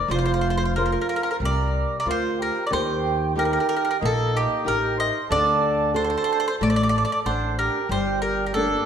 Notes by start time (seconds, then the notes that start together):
0.08 F1 F3 C5
0.15 F4 C5
0.26 C5
0.34 C5
0.41 C5
0.50 C5
0.57 C5
0.65 C5
0.76 F4 A#4 C5
0.81 F4
0.86 A#4
0.92 A#4
1.01 A#4
1.09 A#4
1.16 A#4
1.23 A#4
1.31 A#4
1.40 C2 C3 A#4
1.45 D5
2.00 A#4 D5
2.06 D2 F4 A#4 C5
2.11 C5
2.39 G4 A#4
2.63 A#4 D5
2.71 D#2 D#3 G4 C5
3.36 D#4 G4 A#4
3.45 A#4
3.53 A#4
3.60 A#4
3.69 A#4
3.77 A#4
3.85 A#4
3.91 A#4
4.01 A#1 A#3 D#4
4.05 A4
4.34 D#4 G4
4.64 A1 D#4 G4 A#4
4.97 C5 D#5
5.30 D2 D3 A4 D5
5.94 D4 F#4 A4 C5
6.04 C5
6.10 C5
6.18 C5
6.24 C5
6.33 C5
6.40 C5
6.48 C5
6.60 A1 A3 A4 D5
6.70 D5
6.76 D5
6.83 D5
6.89 D5
6.98 D5
7.05 D5
7.12 D5
7.24 A1 D4 A4 C5 F#5
7.57 G4 A#4
7.89 G1 G3 G4 C5
8.22 G4 A#4
8.46 G4 A#4
8.54 A#3 D4 G4 A4